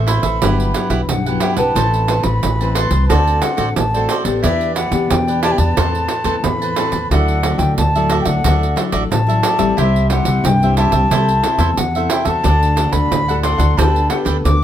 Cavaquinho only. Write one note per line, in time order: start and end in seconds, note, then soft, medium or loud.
0.07 0.23 E4 medium
0.07 0.23 A4 medium
0.07 0.22 C5 medium
0.07 0.21 E5 medium
0.23 0.41 A4 soft
0.23 0.40 C5 soft
0.23 0.40 E5 soft
0.42 0.73 E4 medium
0.42 0.74 G4 medium
0.42 0.74 B4 medium
0.42 0.75 F#5 medium
0.74 0.89 E4 soft
0.74 0.89 G4 soft
0.74 0.89 B4 soft
0.74 0.89 F#5 medium
0.90 1.00 E4 medium
0.90 1.00 G4 medium
0.90 1.01 B4 medium
0.90 1.01 F#5 medium
1.26 1.41 G4 soft
1.26 1.41 B4 soft
1.26 1.42 F#5 soft
1.41 1.57 E4 medium
1.41 1.57 G4 medium
1.41 1.56 B4 medium
1.41 1.55 F#5 medium
1.56 1.74 G4 soft
1.56 1.74 B4 soft
1.56 1.74 F#5 soft
1.76 2.07 A4 medium
1.76 2.08 B4 medium
1.76 2.08 C5 medium
1.76 2.09 A5 medium
2.08 2.58 A4 soft
2.08 2.59 B4 medium
2.08 2.58 C5 medium
2.08 2.59 A5 medium
2.60 2.75 B4 soft
2.60 2.74 C5 soft
2.60 2.75 A5 soft
2.75 2.91 A4 medium
2.75 2.91 B4 medium
2.75 2.92 C5 medium
2.75 2.90 A5 medium
2.91 3.08 B4 soft
2.91 3.09 C5 soft
2.91 3.08 A5 soft
3.09 3.41 F#4 medium
3.09 3.41 A4 medium
3.09 3.42 C5 medium
3.09 3.42 D5 medium
3.42 3.56 F#4 soft
3.42 3.56 A4 medium
3.42 3.57 C5 medium
3.42 3.57 D5 soft
3.57 3.68 F#4 medium
3.57 3.68 A4 medium
3.57 3.68 C5 medium
3.57 3.68 D5 medium
3.94 4.09 A4 soft
3.94 4.09 C5 medium
3.94 4.09 D5 medium
4.09 4.25 F#4 medium
4.09 4.25 A4 medium
4.09 4.24 C5 medium
4.09 4.23 D5 medium
4.24 4.42 A4 soft
4.24 4.42 C5 soft
4.24 4.41 D5 medium
4.43 4.74 E4 medium
4.43 4.75 G4 medium
4.43 4.75 B4 medium
4.43 4.76 D5 medium
4.75 5.25 E4 soft
4.75 5.26 G4 soft
4.75 5.26 B4 medium
4.75 5.26 D5 medium
5.27 5.42 G4 soft
5.27 5.42 B4 medium
5.27 5.43 D5 soft
5.42 5.59 E4 medium
5.42 5.58 G4 medium
5.42 5.58 B4 medium
5.42 5.57 D5 medium
5.58 5.76 G4 soft
5.58 5.75 B4 soft
5.58 5.75 D5 soft
5.77 6.08 A4 medium
5.77 6.09 B4 medium
5.77 6.09 C5 medium
5.77 6.09 A5 medium
6.09 6.23 A4 soft
6.09 6.24 B4 soft
6.09 6.23 C5 soft
6.09 6.24 A5 soft
6.24 6.35 A4 medium
6.24 6.35 B4 medium
6.24 6.35 C5 medium
6.24 6.35 A5 medium
6.62 6.77 B4 soft
6.62 6.76 C5 soft
6.62 6.77 A5 soft
6.77 6.93 A4 medium
6.77 6.92 B4 medium
6.77 6.93 C5 medium
6.77 6.91 A5 medium
6.93 7.09 B4 soft
6.93 7.10 C5 soft
6.93 7.09 A5 soft
7.11 7.42 F#4 medium
7.11 7.43 A4 medium
7.11 7.43 D5 medium
7.11 7.44 E5 medium
7.43 7.93 F#4 soft
7.43 7.93 A4 soft
7.43 7.93 D5 medium
7.43 7.94 E5 medium
7.96 8.10 A4 soft
7.96 8.10 D5 soft
7.96 8.10 E5 medium
8.10 8.26 F#4 medium
8.10 8.26 A4 medium
8.10 8.24 D5 medium
8.10 8.24 E5 medium
8.25 8.43 A4 soft
8.25 8.42 D5 soft
8.25 8.42 E5 soft
8.45 8.75 F#4 medium
8.45 8.76 A4 medium
8.45 8.76 D5 medium
8.45 8.76 E5 medium
8.76 8.91 F#4 medium
8.76 8.91 A4 medium
8.76 8.91 D5 soft
8.76 8.92 E5 medium
8.92 9.02 F#4 medium
8.92 9.03 A4 medium
8.92 9.03 D5 medium
8.92 9.03 E5 medium
9.29 9.42 A4 soft
9.29 9.43 D5 soft
9.29 9.44 E5 soft
9.43 9.59 F#4 medium
9.43 9.59 A4 medium
9.43 9.59 D5 medium
9.43 9.58 E5 medium
9.59 9.76 A4 soft
9.59 9.76 D5 soft
9.59 9.75 E5 soft
9.77 10.09 E4 medium
9.77 10.10 G4 medium
9.77 10.10 C5 medium
9.77 10.11 E5 medium
10.10 10.60 E4 medium
10.10 10.60 G4 medium
10.10 10.60 C5 medium
10.10 10.61 E5 soft
10.63 10.76 G4 soft
10.63 10.77 C5 soft
10.63 10.78 E5 soft
10.77 10.93 E4 medium
10.77 10.93 G4 medium
10.77 10.93 C5 medium
10.77 10.91 E5 medium
10.93 11.10 G4 soft
10.93 11.10 C5 soft
10.93 11.09 E5 soft
11.11 11.43 E4 medium
11.11 11.44 A4 medium
11.11 11.44 C5 medium
11.11 11.44 E5 medium
11.44 11.58 E4 soft
11.44 11.58 A4 soft
11.44 11.59 C5 medium
11.44 11.59 E5 soft
11.59 11.69 E4 medium
11.59 11.70 A4 medium
11.59 11.70 C5 medium
11.59 11.70 E5 medium
11.96 12.09 A4 soft
11.96 12.10 C5 soft
11.96 12.10 E5 medium
12.10 12.26 E4 medium
12.10 12.26 A4 medium
12.10 12.24 C5 medium
12.10 12.24 E5 medium
12.25 12.43 A4 soft
12.25 12.42 C5 soft
12.25 12.42 E5 medium
12.44 12.75 D4 medium
12.44 12.75 A4 medium
12.44 12.76 D5 medium
12.44 12.76 F#5 medium
12.76 13.26 D4 soft
12.76 13.26 A4 medium
12.76 13.26 D5 medium
12.76 13.27 F#5 medium
13.28 13.43 A4 soft
13.28 13.43 D5 soft
13.28 13.43 F#5 medium
13.43 13.60 D4 medium
13.43 13.59 A4 medium
13.43 13.58 D5 medium
13.43 13.57 F#5 medium
13.58 13.76 A4 soft
13.58 13.76 D5 soft
13.58 13.75 F#5 soft
13.77 14.09 D4 medium
13.77 14.10 A4 medium
13.77 14.10 B4 medium
13.77 14.10 G5 medium
14.10 14.24 D4 medium
14.10 14.24 A4 medium
14.10 14.25 B4 medium
14.10 14.25 G5 soft
14.25 14.36 D4 medium
14.25 14.36 A4 medium
14.25 14.36 B4 medium
14.25 14.37 G5 medium